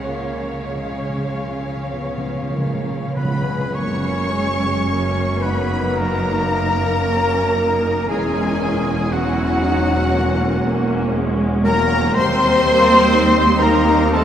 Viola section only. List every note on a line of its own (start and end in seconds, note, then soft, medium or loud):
0.00 3.12 C#5 medium
3.75 4.28 A#3 medium
3.75 4.83 C#4 medium
4.31 4.87 G#3 medium
4.87 7.01 A#3 medium
4.87 5.41 C#4 medium
5.41 7.03 D#4 medium
7.03 8.07 A#3 medium
7.03 7.56 C#4 medium
7.56 8.09 D#4 medium
8.08 9.11 C#4 medium
8.08 9.10 E4 medium
9.12 10.11 C#4 medium
9.12 9.62 E4 medium
9.63 10.13 D#4 medium
10.13 10.61 A#3 medium
10.13 12.11 C#4 medium
10.63 11.12 A#3 medium
11.13 11.64 G#3 medium
11.64 12.15 F#3 medium
12.15 14.09 G3 medium
12.15 12.64 C4 medium
12.65 13.13 A#3 loud
13.13 14.24 D#4 medium
14.13 14.24 C4 medium